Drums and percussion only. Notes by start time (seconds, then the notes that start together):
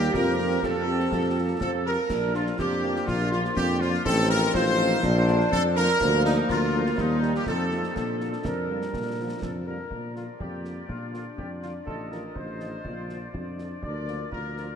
0.02 snare
0.14 concert bass drum, snare, crash
0.39 snare
0.51 snare
0.63 concert bass drum, snare
1.00 snare
1.12 concert bass drum, snare
1.61 concert bass drum, snare
2.10 concert bass drum, snare, crash
2.34 snare
2.46 snare
2.59 concert bass drum, snare
2.96 snare
3.08 concert bass drum, snare
3.32 snare
3.45 snare
3.57 concert bass drum, snare
3.81 snare
3.94 snare
4.05 concert bass drum, snare, crash
4.30 snare
4.42 snare
4.54 concert bass drum, snare
4.91 snare
5.03 concert bass drum, snare
5.28 snare
5.40 snare
5.52 concert bass drum, snare
5.76 snare
5.88 snare
6.01 concert bass drum, snare, crash
6.25 snare
6.37 snare
6.49 concert bass drum, snare
6.86 snare
6.98 concert bass drum, snare
7.22 snare
7.35 snare
7.46 concert bass drum, snare
7.71 snare
7.83 snare
7.96 concert bass drum, snare, crash
8.20 snare
8.33 snare
8.45 concert bass drum, snare
8.82 snare
8.94 concert bass drum, snare
9.42 concert bass drum, snare
9.91 concert bass drum
10.16 snare
10.40 concert bass drum
10.65 snare
10.89 concert bass drum
11.14 snare
11.38 concert bass drum
11.62 snare
11.87 concert bass drum
12.12 snare
12.35 concert bass drum
12.60 snare
12.85 concert bass drum
13.09 snare
13.34 concert bass drum
13.58 snare
13.83 concert bass drum
14.08 snare
14.32 concert bass drum
14.57 snare